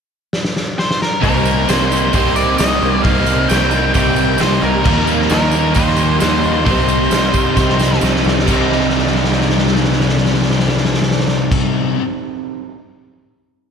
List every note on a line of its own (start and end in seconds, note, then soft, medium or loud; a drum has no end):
0.33 snare medium
0.45 snare medium
0.56 snare medium
0.79 1.02 C5 medium
0.79 snare medium
0.91 snare medium
1.02 1.21 A#4 medium
1.02 snare medium
1.22 1.65 C2 medium
1.22 1.66 C3 medium
1.22 1.67 G3 loud
1.22 1.44 A#3 medium
1.22 1.68 C4 loud
1.22 1.68 D#4 medium
1.22 1.69 A#4 medium
1.22 kick loud
1.22 open hi-hat medium
1.22 tambourine soft
1.44 1.67 A#3 medium
1.44 tambourine medium
1.67 2.10 C2 medium
1.67 2.13 C3 medium
1.67 1.91 G3 medium
1.67 1.90 A#3 medium
1.67 1.90 C4 medium
1.67 1.89 D#4 medium
1.67 2.13 C5 medium
1.67 snare loud
1.67 open hi-hat medium
1.67 tambourine medium
1.89 2.14 G3 medium
1.89 2.36 A#3 medium
1.89 2.13 C4 medium
1.89 2.15 D#4 medium
1.89 tambourine medium
2.13 2.56 C2 medium
2.13 2.57 C3 medium
2.13 2.59 G3 medium
2.13 2.58 C4 medium
2.13 2.60 D#4 medium
2.13 3.94 G4 medium
2.13 2.35 C5 medium
2.13 kick loud
2.13 open hi-hat medium
2.13 tambourine medium
2.35 2.59 G3 medium
2.35 2.83 A#3 medium
2.35 2.60 C4 medium
2.35 2.57 D5 medium
2.35 tambourine medium
2.58 2.80 C2 medium
2.58 3.02 C3 medium
2.58 2.81 G3 medium
2.58 2.80 C4 medium
2.58 4.38 D#4 medium
2.58 2.79 D#4 medium
2.58 3.03 D#5 medium
2.58 snare loud
2.58 open hi-hat medium
2.58 tambourine loud
2.80 3.03 C2 medium
2.80 3.03 G3 medium
2.80 3.05 A#3 medium
2.80 3.03 C4 medium
2.80 3.04 D#4 medium
2.80 tambourine soft
3.03 3.46 C2 medium
3.03 3.47 C3 medium
3.03 3.49 G3 medium
3.03 3.26 A#3 medium
3.03 3.49 C4 medium
3.03 3.50 D#4 loud
3.03 3.50 F5 loud
3.03 kick loud
3.03 open hi-hat medium
3.03 tambourine soft
3.26 3.48 A#3 medium
3.26 tambourine medium
3.48 3.92 C2 medium
3.48 3.93 C3 medium
3.48 3.73 G3 medium
3.48 3.70 A#3 medium
3.48 3.71 C4 medium
3.48 3.71 D#4 medium
3.48 3.92 G5 loud
3.48 snare loud
3.48 open hi-hat medium
3.48 tambourine medium
3.71 3.95 G3 medium
3.71 4.16 A#3 medium
3.71 3.94 C4 medium
3.71 3.96 D#4 medium
3.71 tambourine medium
3.94 4.37 C2 medium
3.94 4.38 C3 medium
3.94 4.40 G3 medium
3.94 4.39 C4 medium
3.94 4.41 D#4 medium
3.94 4.88 G4 medium
3.94 4.41 G5 loud
3.94 kick loud
3.94 open hi-hat medium
3.94 tambourine medium
4.16 4.39 G3 medium
4.16 4.60 A#3 medium
4.16 4.39 C4 medium
4.16 tambourine medium
4.38 4.61 C2 medium
4.38 4.83 C3 medium
4.38 4.64 G3 medium
4.38 4.62 C4 medium
4.38 4.88 D#4 medium
4.38 4.62 D#4 medium
4.38 4.62 C5 medium
4.38 snare loud
4.38 open hi-hat medium
4.38 tambourine medium
4.61 4.83 C2 medium
4.61 4.85 G3 medium
4.61 4.84 A#3 medium
4.61 4.84 C4 medium
4.61 4.86 D#4 medium
4.61 5.05 A#4 medium
4.61 tambourine soft
4.84 5.27 D#2 medium
4.84 5.29 D#3 medium
4.84 5.29 F3 medium
4.84 5.31 G3 medium
4.84 5.31 A#3 loud
4.84 5.32 D#4 loud
4.84 kick loud
4.84 crash loud
4.84 tambourine soft
5.07 5.52 A#3 medium
5.07 tambourine medium
5.21 snare soft
5.29 5.72 D#2 medium
5.29 5.73 D#3 medium
5.29 6.42 F3 medium
5.29 5.55 G3 medium
5.29 5.53 A#3 medium
5.29 5.53 D#4 medium
5.29 5.75 A#4 loud
5.29 snare loud
5.29 open hi-hat medium
5.29 tambourine medium
5.51 5.97 A#3 medium
5.51 5.74 A#3 medium
5.51 5.76 D#4 medium
5.51 tambourine medium
5.56 5.75 G3 medium
5.74 6.17 D#2 loud
5.74 6.18 D#3 medium
5.74 6.20 G3 medium
5.74 6.19 A#3 medium
5.74 6.21 D#4 medium
5.74 7.57 G4 medium
5.74 6.19 C5 loud
5.74 kick loud
5.74 open hi-hat medium
5.74 tambourine medium
5.88 snare soft
5.97 6.66 A#3 medium
5.97 6.23 D#4 medium
5.97 tambourine medium
6.01 6.21 A#3 medium
6.19 6.42 D#2 medium
6.19 6.64 D#3 medium
6.19 6.43 G3 medium
6.19 6.42 A#3 medium
6.19 8.02 D#4 medium
6.19 6.41 D#4 medium
6.19 6.64 C5 loud
6.19 snare loud
6.19 open hi-hat medium
6.19 tambourine loud
6.42 6.65 D#2 medium
6.42 6.65 F3 medium
6.42 6.65 G3 medium
6.42 6.64 A#3 medium
6.42 6.66 D#4 medium
6.42 tambourine soft
6.64 7.08 C2 medium
6.64 7.09 C3 medium
6.64 7.10 G3 medium
6.64 7.10 C4 medium
6.64 7.11 D#4 medium
6.64 7.97 C5 medium
6.64 kick loud
6.64 open hi-hat medium
6.64 tambourine soft
6.88 7.33 C4 medium
6.88 tambourine medium
7.10 7.53 C2 medium
7.10 7.54 C3 medium
7.10 7.33 G3 medium
7.10 8.24 G3 medium
7.10 7.31 C4 medium
7.10 7.30 D#4 medium
7.10 snare loud
7.10 open hi-hat medium
7.10 tambourine medium
7.32 7.55 G3 medium
7.32 7.56 C4 medium
7.32 7.77 C4 medium
7.32 7.56 D#4 medium
7.32 kick medium
7.32 tambourine medium
7.55 7.98 C2 medium
7.55 7.99 C3 medium
7.55 7.99 G3 medium
7.55 8.00 C4 medium
7.55 8.01 D#4 medium
7.55 8.47 G4 medium
7.55 kick loud
7.55 snare medium
7.55 tambourine medium
7.69 snare medium
7.78 8.01 G3 medium
7.78 8.47 C4 medium
7.78 8.02 C4 medium
7.78 snare medium
7.78 tambourine medium
7.93 snare medium
8.00 8.23 C2 medium
8.00 8.43 C3 medium
8.00 8.23 G3 medium
8.00 8.23 C4 medium
8.00 8.22 D#4 medium
8.00 8.47 D#4 medium
8.00 tambourine medium
8.04 snare medium
8.16 snare medium
8.23 8.46 C2 medium
8.23 8.44 G3 medium
8.23 8.46 G3 medium
8.23 8.45 C4 medium
8.23 8.45 D#4 medium
8.23 tambourine soft
8.28 snare medium
8.39 snare medium
8.45 11.56 C2 medium
8.45 11.95 C3 medium
8.45 11.96 G3 medium
8.45 11.97 G3 loud
8.45 11.97 C4 loud
8.45 11.98 D#4 loud
8.45 kick loud
8.45 crash medium
8.45 tambourine medium
8.49 11.99 C4 medium
8.49 12.00 D#4 loud
8.49 12.01 G4 loud
8.72 snare soft
8.80 snare soft
8.89 snare soft
8.98 snare medium
9.07 snare soft
9.15 snare medium
9.24 snare medium
9.32 snare medium
9.41 snare medium
9.50 snare medium
9.58 snare medium
9.67 snare medium
9.76 snare medium
9.84 snare medium
9.92 snare medium
10.00 snare medium
10.09 snare medium
10.17 snare medium
10.25 snare medium
10.34 snare medium
10.42 snare medium
10.51 snare medium
10.59 snare medium
10.68 snare medium
10.77 snare medium
10.85 snare medium
10.94 snare medium
11.02 snare medium
11.11 snare medium
11.20 snare medium
11.28 snare loud
11.52 kick loud
11.52 crash loud